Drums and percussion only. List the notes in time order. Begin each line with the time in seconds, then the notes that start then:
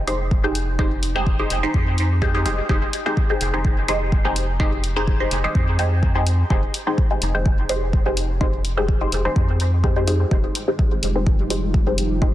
0.08 open hi-hat
0.31 kick
0.55 open hi-hat
0.79 kick
1.03 open hi-hat
1.27 kick
1.50 open hi-hat
1.74 kick
1.98 open hi-hat
2.22 kick
2.46 open hi-hat
2.69 kick
2.93 open hi-hat
3.17 kick
3.41 open hi-hat
3.65 kick
3.88 open hi-hat
4.12 kick
4.36 open hi-hat
4.60 kick
4.84 open hi-hat
5.07 kick
5.31 open hi-hat
5.55 kick
5.79 open hi-hat
6.03 kick
6.27 open hi-hat
6.50 kick
6.74 open hi-hat
6.98 kick
7.22 open hi-hat
7.46 kick
7.69 open hi-hat
7.93 kick
8.17 open hi-hat
8.41 kick
8.65 open hi-hat
8.88 kick
9.12 open hi-hat
9.36 kick
9.60 open hi-hat
9.84 kick
10.07 open hi-hat
10.31 kick
10.55 open hi-hat
10.79 kick
11.03 open hi-hat
11.27 kick
11.50 open hi-hat
11.74 kick
11.98 open hi-hat
12.22 kick